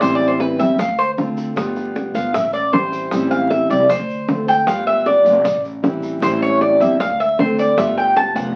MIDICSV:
0, 0, Header, 1, 6, 480
1, 0, Start_track
1, 0, Key_signature, 0, "minor"
1, 0, Tempo, 388098
1, 19, Time_signature, 4, 2, 24, 8
1, 10581, End_track
2, 0, Start_track
2, 0, Title_t, "Cuban tres"
2, 0, Program_c, 0, 25
2, 19, Note_on_c, 0, 72, 89
2, 174, Note_off_c, 0, 72, 0
2, 184, Note_on_c, 0, 74, 100
2, 337, Note_off_c, 0, 74, 0
2, 342, Note_on_c, 0, 72, 89
2, 494, Note_off_c, 0, 72, 0
2, 499, Note_on_c, 0, 71, 84
2, 732, Note_off_c, 0, 71, 0
2, 735, Note_on_c, 0, 76, 94
2, 970, Note_off_c, 0, 76, 0
2, 978, Note_on_c, 0, 77, 92
2, 1211, Note_off_c, 0, 77, 0
2, 1219, Note_on_c, 0, 72, 98
2, 1363, Note_off_c, 0, 72, 0
2, 2659, Note_on_c, 0, 77, 90
2, 2891, Note_off_c, 0, 77, 0
2, 2896, Note_on_c, 0, 76, 88
2, 3128, Note_off_c, 0, 76, 0
2, 3133, Note_on_c, 0, 74, 82
2, 3369, Note_off_c, 0, 74, 0
2, 3375, Note_on_c, 0, 72, 84
2, 4048, Note_off_c, 0, 72, 0
2, 4092, Note_on_c, 0, 77, 104
2, 4328, Note_off_c, 0, 77, 0
2, 4334, Note_on_c, 0, 76, 81
2, 4569, Note_off_c, 0, 76, 0
2, 4581, Note_on_c, 0, 74, 93
2, 4813, Note_off_c, 0, 74, 0
2, 4820, Note_on_c, 0, 72, 91
2, 5490, Note_off_c, 0, 72, 0
2, 5544, Note_on_c, 0, 79, 107
2, 5774, Note_off_c, 0, 79, 0
2, 5785, Note_on_c, 0, 77, 89
2, 6014, Note_off_c, 0, 77, 0
2, 6023, Note_on_c, 0, 76, 95
2, 6253, Note_off_c, 0, 76, 0
2, 6263, Note_on_c, 0, 74, 83
2, 6930, Note_off_c, 0, 74, 0
2, 7707, Note_on_c, 0, 72, 77
2, 7935, Note_off_c, 0, 72, 0
2, 7945, Note_on_c, 0, 73, 99
2, 8174, Note_off_c, 0, 73, 0
2, 8184, Note_on_c, 0, 74, 82
2, 8413, Note_off_c, 0, 74, 0
2, 8424, Note_on_c, 0, 76, 84
2, 8653, Note_off_c, 0, 76, 0
2, 8663, Note_on_c, 0, 77, 105
2, 8892, Note_off_c, 0, 77, 0
2, 8908, Note_on_c, 0, 76, 93
2, 9135, Note_off_c, 0, 76, 0
2, 9153, Note_on_c, 0, 72, 76
2, 9377, Note_off_c, 0, 72, 0
2, 9389, Note_on_c, 0, 74, 92
2, 9615, Note_off_c, 0, 74, 0
2, 9621, Note_on_c, 0, 76, 87
2, 9851, Note_off_c, 0, 76, 0
2, 9865, Note_on_c, 0, 79, 95
2, 10093, Note_off_c, 0, 79, 0
2, 10101, Note_on_c, 0, 81, 110
2, 10331, Note_off_c, 0, 81, 0
2, 10338, Note_on_c, 0, 78, 91
2, 10569, Note_off_c, 0, 78, 0
2, 10581, End_track
3, 0, Start_track
3, 0, Title_t, "Steel-string acoustic guitar"
3, 0, Program_c, 1, 25
3, 0, Note_on_c, 1, 52, 79
3, 13, Note_on_c, 1, 55, 77
3, 18, Note_on_c, 1, 60, 74
3, 29, Note_on_c, 1, 64, 76
3, 711, Note_off_c, 1, 64, 0
3, 719, Note_off_c, 1, 52, 0
3, 724, Note_off_c, 1, 60, 0
3, 726, Note_off_c, 1, 55, 0
3, 726, Note_on_c, 1, 64, 67
3, 738, Note_on_c, 1, 60, 60
3, 753, Note_on_c, 1, 55, 57
3, 963, Note_off_c, 1, 60, 0
3, 963, Note_off_c, 1, 64, 0
3, 966, Note_off_c, 1, 55, 0
3, 1451, Note_on_c, 1, 50, 52
3, 1457, Note_on_c, 1, 57, 53
3, 1466, Note_on_c, 1, 60, 58
3, 1474, Note_on_c, 1, 65, 61
3, 1921, Note_off_c, 1, 57, 0
3, 1925, Note_off_c, 1, 50, 0
3, 1925, Note_on_c, 1, 55, 72
3, 1932, Note_off_c, 1, 60, 0
3, 1936, Note_on_c, 1, 59, 82
3, 1937, Note_off_c, 1, 65, 0
3, 1952, Note_on_c, 1, 65, 80
3, 2638, Note_off_c, 1, 65, 0
3, 2643, Note_off_c, 1, 55, 0
3, 2648, Note_off_c, 1, 59, 0
3, 2653, Note_on_c, 1, 65, 61
3, 2677, Note_on_c, 1, 59, 59
3, 2886, Note_off_c, 1, 65, 0
3, 2898, Note_off_c, 1, 59, 0
3, 3363, Note_on_c, 1, 52, 47
3, 3373, Note_on_c, 1, 55, 50
3, 3386, Note_on_c, 1, 60, 51
3, 3391, Note_on_c, 1, 64, 53
3, 3836, Note_off_c, 1, 52, 0
3, 3846, Note_off_c, 1, 55, 0
3, 3851, Note_on_c, 1, 52, 68
3, 3853, Note_off_c, 1, 60, 0
3, 3855, Note_off_c, 1, 64, 0
3, 3867, Note_on_c, 1, 55, 80
3, 3873, Note_on_c, 1, 60, 78
3, 3877, Note_on_c, 1, 64, 80
3, 4555, Note_off_c, 1, 64, 0
3, 4565, Note_off_c, 1, 52, 0
3, 4565, Note_off_c, 1, 60, 0
3, 4569, Note_on_c, 1, 64, 65
3, 4573, Note_off_c, 1, 55, 0
3, 4580, Note_on_c, 1, 60, 61
3, 4596, Note_on_c, 1, 55, 59
3, 4804, Note_off_c, 1, 64, 0
3, 4810, Note_off_c, 1, 60, 0
3, 4812, Note_off_c, 1, 55, 0
3, 5288, Note_on_c, 1, 50, 45
3, 5302, Note_on_c, 1, 57, 53
3, 5309, Note_on_c, 1, 60, 53
3, 5317, Note_on_c, 1, 65, 52
3, 5757, Note_off_c, 1, 57, 0
3, 5762, Note_on_c, 1, 55, 70
3, 5763, Note_off_c, 1, 50, 0
3, 5773, Note_off_c, 1, 60, 0
3, 5778, Note_off_c, 1, 65, 0
3, 5778, Note_on_c, 1, 59, 77
3, 5792, Note_on_c, 1, 65, 84
3, 6469, Note_off_c, 1, 65, 0
3, 6480, Note_off_c, 1, 55, 0
3, 6484, Note_on_c, 1, 65, 63
3, 6488, Note_off_c, 1, 59, 0
3, 6510, Note_on_c, 1, 59, 60
3, 6721, Note_off_c, 1, 65, 0
3, 6734, Note_off_c, 1, 59, 0
3, 7205, Note_on_c, 1, 52, 54
3, 7209, Note_on_c, 1, 55, 56
3, 7221, Note_on_c, 1, 60, 50
3, 7227, Note_on_c, 1, 64, 58
3, 7661, Note_off_c, 1, 52, 0
3, 7668, Note_off_c, 1, 55, 0
3, 7676, Note_on_c, 1, 52, 76
3, 7681, Note_off_c, 1, 60, 0
3, 7683, Note_on_c, 1, 55, 73
3, 7687, Note_off_c, 1, 64, 0
3, 7696, Note_on_c, 1, 60, 73
3, 7702, Note_on_c, 1, 64, 80
3, 8396, Note_off_c, 1, 52, 0
3, 8398, Note_off_c, 1, 64, 0
3, 8400, Note_off_c, 1, 55, 0
3, 8407, Note_off_c, 1, 60, 0
3, 8413, Note_on_c, 1, 64, 70
3, 8422, Note_on_c, 1, 60, 58
3, 8435, Note_on_c, 1, 55, 60
3, 8645, Note_off_c, 1, 60, 0
3, 8645, Note_off_c, 1, 64, 0
3, 8650, Note_off_c, 1, 55, 0
3, 9122, Note_on_c, 1, 50, 49
3, 9133, Note_on_c, 1, 57, 55
3, 9137, Note_on_c, 1, 60, 54
3, 9149, Note_on_c, 1, 65, 60
3, 9599, Note_off_c, 1, 50, 0
3, 9601, Note_off_c, 1, 57, 0
3, 9605, Note_on_c, 1, 55, 73
3, 9607, Note_off_c, 1, 60, 0
3, 9613, Note_off_c, 1, 65, 0
3, 9622, Note_on_c, 1, 59, 70
3, 9633, Note_on_c, 1, 65, 80
3, 10315, Note_off_c, 1, 65, 0
3, 10320, Note_off_c, 1, 55, 0
3, 10328, Note_off_c, 1, 59, 0
3, 10330, Note_on_c, 1, 65, 64
3, 10354, Note_on_c, 1, 59, 55
3, 10563, Note_off_c, 1, 65, 0
3, 10575, Note_off_c, 1, 59, 0
3, 10581, End_track
4, 0, Start_track
4, 0, Title_t, "Upright bass"
4, 0, Program_c, 2, 32
4, 9, Note_on_c, 2, 33, 95
4, 698, Note_off_c, 2, 33, 0
4, 730, Note_on_c, 2, 31, 89
4, 960, Note_off_c, 2, 31, 0
4, 967, Note_on_c, 2, 38, 91
4, 1084, Note_off_c, 2, 38, 0
4, 1091, Note_on_c, 2, 38, 89
4, 1893, Note_off_c, 2, 38, 0
4, 1935, Note_on_c, 2, 31, 99
4, 2621, Note_off_c, 2, 31, 0
4, 2651, Note_on_c, 2, 31, 94
4, 2883, Note_off_c, 2, 31, 0
4, 2891, Note_on_c, 2, 33, 91
4, 3009, Note_off_c, 2, 33, 0
4, 3017, Note_on_c, 2, 33, 85
4, 3816, Note_off_c, 2, 33, 0
4, 3857, Note_on_c, 2, 33, 96
4, 4542, Note_off_c, 2, 33, 0
4, 4575, Note_on_c, 2, 36, 94
4, 4805, Note_off_c, 2, 36, 0
4, 4819, Note_on_c, 2, 38, 90
4, 4929, Note_off_c, 2, 38, 0
4, 4937, Note_on_c, 2, 38, 88
4, 5735, Note_off_c, 2, 38, 0
4, 5776, Note_on_c, 2, 31, 97
4, 6461, Note_off_c, 2, 31, 0
4, 6497, Note_on_c, 2, 29, 93
4, 6725, Note_off_c, 2, 29, 0
4, 6735, Note_on_c, 2, 33, 101
4, 6846, Note_off_c, 2, 33, 0
4, 6853, Note_on_c, 2, 33, 86
4, 7653, Note_off_c, 2, 33, 0
4, 7692, Note_on_c, 2, 33, 103
4, 8378, Note_off_c, 2, 33, 0
4, 8412, Note_on_c, 2, 31, 104
4, 8642, Note_off_c, 2, 31, 0
4, 8652, Note_on_c, 2, 38, 98
4, 8763, Note_off_c, 2, 38, 0
4, 8770, Note_on_c, 2, 38, 86
4, 9570, Note_off_c, 2, 38, 0
4, 9612, Note_on_c, 2, 31, 98
4, 10297, Note_off_c, 2, 31, 0
4, 10332, Note_on_c, 2, 29, 102
4, 10558, Note_off_c, 2, 29, 0
4, 10581, End_track
5, 0, Start_track
5, 0, Title_t, "Muted steel-string acoustic guitar strokes"
5, 971, Note_on_c, 9, 29, 69
5, 1095, Note_off_c, 9, 29, 0
5, 2896, Note_on_c, 9, 29, 63
5, 3020, Note_off_c, 9, 29, 0
5, 4815, Note_on_c, 9, 29, 58
5, 4939, Note_off_c, 9, 29, 0
5, 6729, Note_on_c, 9, 29, 64
5, 6852, Note_off_c, 9, 29, 0
5, 8650, Note_on_c, 9, 29, 66
5, 8774, Note_off_c, 9, 29, 0
5, 10581, End_track
6, 0, Start_track
6, 0, Title_t, "Drums"
6, 10, Note_on_c, 9, 60, 73
6, 22, Note_on_c, 9, 70, 87
6, 133, Note_off_c, 9, 60, 0
6, 146, Note_off_c, 9, 70, 0
6, 254, Note_on_c, 9, 60, 35
6, 266, Note_on_c, 9, 70, 31
6, 378, Note_off_c, 9, 60, 0
6, 390, Note_off_c, 9, 70, 0
6, 494, Note_on_c, 9, 60, 63
6, 501, Note_on_c, 9, 70, 29
6, 618, Note_off_c, 9, 60, 0
6, 625, Note_off_c, 9, 70, 0
6, 735, Note_on_c, 9, 60, 34
6, 738, Note_on_c, 9, 70, 63
6, 859, Note_off_c, 9, 60, 0
6, 861, Note_off_c, 9, 70, 0
6, 975, Note_on_c, 9, 70, 95
6, 979, Note_on_c, 9, 60, 66
6, 1099, Note_off_c, 9, 70, 0
6, 1103, Note_off_c, 9, 60, 0
6, 1223, Note_on_c, 9, 70, 30
6, 1347, Note_off_c, 9, 70, 0
6, 1459, Note_on_c, 9, 70, 30
6, 1462, Note_on_c, 9, 60, 34
6, 1462, Note_on_c, 9, 61, 79
6, 1582, Note_off_c, 9, 70, 0
6, 1586, Note_off_c, 9, 60, 0
6, 1586, Note_off_c, 9, 61, 0
6, 1696, Note_on_c, 9, 70, 67
6, 1705, Note_on_c, 9, 60, 38
6, 1820, Note_off_c, 9, 70, 0
6, 1829, Note_off_c, 9, 60, 0
6, 1936, Note_on_c, 9, 70, 84
6, 1944, Note_on_c, 9, 60, 73
6, 2060, Note_off_c, 9, 70, 0
6, 2067, Note_off_c, 9, 60, 0
6, 2174, Note_on_c, 9, 70, 29
6, 2187, Note_on_c, 9, 60, 34
6, 2297, Note_off_c, 9, 70, 0
6, 2311, Note_off_c, 9, 60, 0
6, 2418, Note_on_c, 9, 70, 29
6, 2424, Note_on_c, 9, 60, 61
6, 2541, Note_off_c, 9, 70, 0
6, 2548, Note_off_c, 9, 60, 0
6, 2658, Note_on_c, 9, 70, 64
6, 2662, Note_on_c, 9, 60, 32
6, 2781, Note_off_c, 9, 70, 0
6, 2786, Note_off_c, 9, 60, 0
6, 2898, Note_on_c, 9, 60, 65
6, 2899, Note_on_c, 9, 70, 87
6, 3021, Note_off_c, 9, 60, 0
6, 3023, Note_off_c, 9, 70, 0
6, 3140, Note_on_c, 9, 70, 30
6, 3264, Note_off_c, 9, 70, 0
6, 3375, Note_on_c, 9, 70, 27
6, 3381, Note_on_c, 9, 60, 35
6, 3381, Note_on_c, 9, 61, 84
6, 3499, Note_off_c, 9, 70, 0
6, 3505, Note_off_c, 9, 60, 0
6, 3505, Note_off_c, 9, 61, 0
6, 3613, Note_on_c, 9, 60, 35
6, 3619, Note_on_c, 9, 70, 72
6, 3737, Note_off_c, 9, 60, 0
6, 3743, Note_off_c, 9, 70, 0
6, 3850, Note_on_c, 9, 60, 66
6, 3856, Note_on_c, 9, 70, 88
6, 3974, Note_off_c, 9, 60, 0
6, 3980, Note_off_c, 9, 70, 0
6, 4092, Note_on_c, 9, 60, 36
6, 4099, Note_on_c, 9, 70, 30
6, 4216, Note_off_c, 9, 60, 0
6, 4222, Note_off_c, 9, 70, 0
6, 4337, Note_on_c, 9, 60, 57
6, 4341, Note_on_c, 9, 70, 31
6, 4461, Note_off_c, 9, 60, 0
6, 4465, Note_off_c, 9, 70, 0
6, 4578, Note_on_c, 9, 60, 34
6, 4582, Note_on_c, 9, 70, 65
6, 4702, Note_off_c, 9, 60, 0
6, 4706, Note_off_c, 9, 70, 0
6, 4818, Note_on_c, 9, 60, 64
6, 4820, Note_on_c, 9, 70, 97
6, 4942, Note_off_c, 9, 60, 0
6, 4943, Note_off_c, 9, 70, 0
6, 5066, Note_on_c, 9, 70, 31
6, 5190, Note_off_c, 9, 70, 0
6, 5300, Note_on_c, 9, 60, 36
6, 5300, Note_on_c, 9, 61, 84
6, 5303, Note_on_c, 9, 70, 29
6, 5424, Note_off_c, 9, 60, 0
6, 5424, Note_off_c, 9, 61, 0
6, 5427, Note_off_c, 9, 70, 0
6, 5538, Note_on_c, 9, 60, 37
6, 5543, Note_on_c, 9, 70, 70
6, 5661, Note_off_c, 9, 60, 0
6, 5666, Note_off_c, 9, 70, 0
6, 5775, Note_on_c, 9, 60, 74
6, 5780, Note_on_c, 9, 70, 96
6, 5899, Note_off_c, 9, 60, 0
6, 5904, Note_off_c, 9, 70, 0
6, 6020, Note_on_c, 9, 70, 33
6, 6022, Note_on_c, 9, 60, 33
6, 6144, Note_off_c, 9, 70, 0
6, 6146, Note_off_c, 9, 60, 0
6, 6260, Note_on_c, 9, 60, 59
6, 6262, Note_on_c, 9, 70, 26
6, 6384, Note_off_c, 9, 60, 0
6, 6385, Note_off_c, 9, 70, 0
6, 6500, Note_on_c, 9, 60, 33
6, 6500, Note_on_c, 9, 70, 66
6, 6623, Note_off_c, 9, 70, 0
6, 6624, Note_off_c, 9, 60, 0
6, 6739, Note_on_c, 9, 70, 95
6, 6740, Note_on_c, 9, 60, 62
6, 6863, Note_off_c, 9, 70, 0
6, 6864, Note_off_c, 9, 60, 0
6, 6983, Note_on_c, 9, 70, 30
6, 7106, Note_off_c, 9, 70, 0
6, 7220, Note_on_c, 9, 60, 35
6, 7220, Note_on_c, 9, 61, 83
6, 7220, Note_on_c, 9, 70, 31
6, 7343, Note_off_c, 9, 70, 0
6, 7344, Note_off_c, 9, 60, 0
6, 7344, Note_off_c, 9, 61, 0
6, 7454, Note_on_c, 9, 70, 67
6, 7460, Note_on_c, 9, 60, 37
6, 7578, Note_off_c, 9, 70, 0
6, 7584, Note_off_c, 9, 60, 0
6, 7697, Note_on_c, 9, 70, 99
6, 7698, Note_on_c, 9, 60, 67
6, 7821, Note_off_c, 9, 60, 0
6, 7821, Note_off_c, 9, 70, 0
6, 7938, Note_on_c, 9, 60, 32
6, 7942, Note_on_c, 9, 70, 32
6, 8062, Note_off_c, 9, 60, 0
6, 8065, Note_off_c, 9, 70, 0
6, 8177, Note_on_c, 9, 60, 61
6, 8186, Note_on_c, 9, 70, 29
6, 8301, Note_off_c, 9, 60, 0
6, 8309, Note_off_c, 9, 70, 0
6, 8415, Note_on_c, 9, 60, 36
6, 8419, Note_on_c, 9, 70, 68
6, 8539, Note_off_c, 9, 60, 0
6, 8543, Note_off_c, 9, 70, 0
6, 8659, Note_on_c, 9, 60, 68
6, 8662, Note_on_c, 9, 70, 91
6, 8783, Note_off_c, 9, 60, 0
6, 8785, Note_off_c, 9, 70, 0
6, 8906, Note_on_c, 9, 70, 29
6, 9030, Note_off_c, 9, 70, 0
6, 9142, Note_on_c, 9, 60, 38
6, 9142, Note_on_c, 9, 61, 82
6, 9150, Note_on_c, 9, 70, 30
6, 9265, Note_off_c, 9, 60, 0
6, 9265, Note_off_c, 9, 61, 0
6, 9274, Note_off_c, 9, 70, 0
6, 9380, Note_on_c, 9, 60, 37
6, 9382, Note_on_c, 9, 70, 69
6, 9504, Note_off_c, 9, 60, 0
6, 9506, Note_off_c, 9, 70, 0
6, 9619, Note_on_c, 9, 60, 72
6, 9623, Note_on_c, 9, 70, 97
6, 9743, Note_off_c, 9, 60, 0
6, 9747, Note_off_c, 9, 70, 0
6, 9859, Note_on_c, 9, 60, 35
6, 9868, Note_on_c, 9, 70, 30
6, 9983, Note_off_c, 9, 60, 0
6, 9992, Note_off_c, 9, 70, 0
6, 10097, Note_on_c, 9, 60, 58
6, 10104, Note_on_c, 9, 70, 28
6, 10221, Note_off_c, 9, 60, 0
6, 10228, Note_off_c, 9, 70, 0
6, 10336, Note_on_c, 9, 60, 35
6, 10344, Note_on_c, 9, 70, 69
6, 10460, Note_off_c, 9, 60, 0
6, 10468, Note_off_c, 9, 70, 0
6, 10581, End_track
0, 0, End_of_file